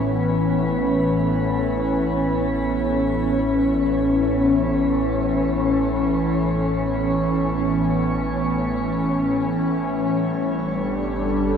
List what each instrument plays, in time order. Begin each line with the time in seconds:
Already playing: analog synth bass A1, ambient pad A2 E3 B3 C#4
10.10 analog synth bass G1, ambient pad G3
10.36 ambient pad D4
10.72 ambient pad A4